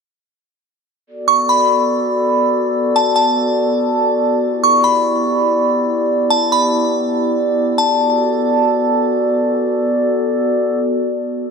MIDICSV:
0, 0, Header, 1, 3, 480
1, 0, Start_track
1, 0, Key_signature, 2, "major"
1, 0, Tempo, 419580
1, 1222, Time_signature, 4, 2, 24, 8
1, 13164, End_track
2, 0, Start_track
2, 0, Title_t, "Synth bell"
2, 0, Program_c, 0, 98
2, 1461, Note_on_c, 0, 85, 76
2, 1690, Note_off_c, 0, 85, 0
2, 1706, Note_on_c, 0, 83, 82
2, 3098, Note_off_c, 0, 83, 0
2, 3384, Note_on_c, 0, 81, 72
2, 3598, Note_off_c, 0, 81, 0
2, 3611, Note_on_c, 0, 81, 76
2, 5011, Note_off_c, 0, 81, 0
2, 5303, Note_on_c, 0, 85, 71
2, 5530, Note_off_c, 0, 85, 0
2, 5536, Note_on_c, 0, 83, 81
2, 6933, Note_off_c, 0, 83, 0
2, 7212, Note_on_c, 0, 81, 79
2, 7445, Note_off_c, 0, 81, 0
2, 7461, Note_on_c, 0, 83, 79
2, 7913, Note_off_c, 0, 83, 0
2, 8902, Note_on_c, 0, 81, 80
2, 10296, Note_off_c, 0, 81, 0
2, 13164, End_track
3, 0, Start_track
3, 0, Title_t, "Glass harmonica"
3, 0, Program_c, 1, 92
3, 1222, Note_on_c, 1, 69, 57
3, 1223, Note_on_c, 1, 59, 62
3, 1223, Note_on_c, 1, 66, 57
3, 1223, Note_on_c, 1, 74, 71
3, 5024, Note_off_c, 1, 66, 0
3, 5024, Note_off_c, 1, 69, 0
3, 5062, Note_on_c, 1, 64, 57
3, 5062, Note_on_c, 1, 67, 62
3, 8857, Note_off_c, 1, 59, 0
3, 8857, Note_off_c, 1, 74, 0
3, 8863, Note_off_c, 1, 64, 0
3, 8863, Note_off_c, 1, 67, 0
3, 8903, Note_on_c, 1, 66, 58
3, 8903, Note_on_c, 1, 74, 71
3, 8904, Note_on_c, 1, 59, 64
3, 8904, Note_on_c, 1, 69, 58
3, 12342, Note_off_c, 1, 66, 0
3, 12342, Note_off_c, 1, 74, 0
3, 12343, Note_off_c, 1, 59, 0
3, 12343, Note_off_c, 1, 69, 0
3, 13164, End_track
0, 0, End_of_file